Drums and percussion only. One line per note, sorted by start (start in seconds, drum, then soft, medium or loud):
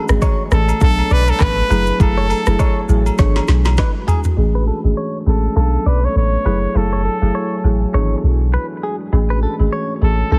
0.08 cross-stick loud
0.08 shaker medium
0.22 kick loud
0.22 high agogo medium
0.22 low woodblock medium
0.22 shaker medium
0.51 cross-stick loud
0.51 shaker medium
0.69 high agogo medium
0.69 shaker medium
0.81 kick loud
0.81 shaker medium
0.99 high agogo medium
1.10 shaker soft
1.27 high agogo medium
1.27 shaker medium
1.40 kick medium
1.40 cross-stick medium
1.40 clap medium
1.40 shaker medium
1.71 high agogo medium
1.71 shaker medium
1.86 shaker medium
2.00 kick loud
2.00 high agogo medium
2.00 shaker medium
2.30 open hi-hat medium
2.30 high agogo medium
2.30 shaker medium
2.46 cross-stick loud
2.46 shaker medium
2.59 kick loud
2.59 high agogo medium
2.59 low woodblock medium
2.59 shaker medium
2.89 shaker medium
3.06 high agogo medium
3.06 shaker medium
3.18 kick loud
3.18 snare medium
3.18 shaker medium
3.36 snare medium
3.36 high agogo medium
3.48 snare medium
3.48 shaker medium
3.65 snare medium
3.65 high agogo medium
3.65 shaker medium
3.77 kick medium
3.77 snare medium
3.77 low woodblock medium
3.77 shaker medium
4.08 floor tom loud
4.08 high agogo medium
4.08 shaker medium
4.24 floor tom medium
4.24 shaker medium